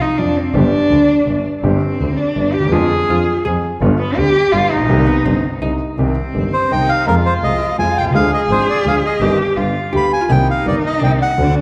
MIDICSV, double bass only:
0, 0, Header, 1, 2, 480
1, 0, Start_track
1, 0, Key_signature, -3, "minor"
1, 0, Tempo, 361011
1, 730, Time_signature, 3, 2, 24, 8
1, 7955, Key_signature, -3, "minor"
1, 15442, End_track
2, 0, Start_track
2, 0, Title_t, "Double bass"
2, 0, Program_c, 0, 43
2, 253, Note_on_c, 0, 41, 58
2, 453, Note_off_c, 0, 41, 0
2, 718, Note_on_c, 0, 31, 86
2, 925, Note_off_c, 0, 31, 0
2, 1197, Note_on_c, 0, 38, 58
2, 1408, Note_off_c, 0, 38, 0
2, 1685, Note_on_c, 0, 31, 49
2, 1897, Note_off_c, 0, 31, 0
2, 2170, Note_on_c, 0, 31, 74
2, 2381, Note_off_c, 0, 31, 0
2, 2660, Note_on_c, 0, 38, 60
2, 2869, Note_off_c, 0, 38, 0
2, 3148, Note_on_c, 0, 31, 55
2, 3354, Note_off_c, 0, 31, 0
2, 3396, Note_on_c, 0, 39, 54
2, 3613, Note_off_c, 0, 39, 0
2, 3621, Note_on_c, 0, 41, 81
2, 3829, Note_off_c, 0, 41, 0
2, 4104, Note_on_c, 0, 41, 61
2, 4311, Note_off_c, 0, 41, 0
2, 4588, Note_on_c, 0, 41, 57
2, 4793, Note_off_c, 0, 41, 0
2, 5069, Note_on_c, 0, 31, 97
2, 5269, Note_off_c, 0, 31, 0
2, 5547, Note_on_c, 0, 38, 65
2, 5745, Note_off_c, 0, 38, 0
2, 6024, Note_on_c, 0, 31, 60
2, 6224, Note_off_c, 0, 31, 0
2, 6268, Note_on_c, 0, 34, 57
2, 6493, Note_off_c, 0, 34, 0
2, 6501, Note_on_c, 0, 36, 96
2, 6702, Note_off_c, 0, 36, 0
2, 6977, Note_on_c, 0, 31, 64
2, 7182, Note_off_c, 0, 31, 0
2, 7464, Note_on_c, 0, 36, 51
2, 7671, Note_off_c, 0, 36, 0
2, 7952, Note_on_c, 0, 36, 76
2, 8158, Note_off_c, 0, 36, 0
2, 8449, Note_on_c, 0, 31, 53
2, 8650, Note_off_c, 0, 31, 0
2, 8926, Note_on_c, 0, 36, 52
2, 9127, Note_off_c, 0, 36, 0
2, 9400, Note_on_c, 0, 41, 78
2, 9602, Note_off_c, 0, 41, 0
2, 9877, Note_on_c, 0, 36, 53
2, 10078, Note_off_c, 0, 36, 0
2, 10349, Note_on_c, 0, 41, 51
2, 10550, Note_off_c, 0, 41, 0
2, 10598, Note_on_c, 0, 36, 49
2, 10815, Note_off_c, 0, 36, 0
2, 10823, Note_on_c, 0, 38, 79
2, 11024, Note_off_c, 0, 38, 0
2, 11297, Note_on_c, 0, 32, 58
2, 11496, Note_off_c, 0, 32, 0
2, 11765, Note_on_c, 0, 38, 52
2, 11968, Note_off_c, 0, 38, 0
2, 12240, Note_on_c, 0, 31, 77
2, 12444, Note_off_c, 0, 31, 0
2, 12721, Note_on_c, 0, 31, 49
2, 12925, Note_off_c, 0, 31, 0
2, 13208, Note_on_c, 0, 38, 47
2, 13412, Note_off_c, 0, 38, 0
2, 13688, Note_on_c, 0, 36, 78
2, 13895, Note_off_c, 0, 36, 0
2, 14177, Note_on_c, 0, 31, 51
2, 14381, Note_off_c, 0, 31, 0
2, 14663, Note_on_c, 0, 36, 54
2, 14866, Note_off_c, 0, 36, 0
2, 15135, Note_on_c, 0, 38, 80
2, 15337, Note_off_c, 0, 38, 0
2, 15442, End_track
0, 0, End_of_file